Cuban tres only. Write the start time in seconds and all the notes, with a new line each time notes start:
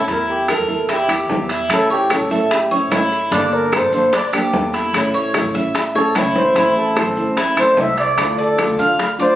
0.08 E4
0.49 A#4
0.89 E4
1.09 G4
1.50 E4
1.90 C#5
2.31 E5
2.71 C#5
2.91 E4
3.32 D4
3.72 A4
4.13 D4
4.33 G4
4.74 E4
5.14 C#5
5.55 E5
5.95 C#5
6.16 E4
6.56 E4
6.97 C5
7.37 E4
7.57 A4
8.39 D5
8.79 F5
9.20 D5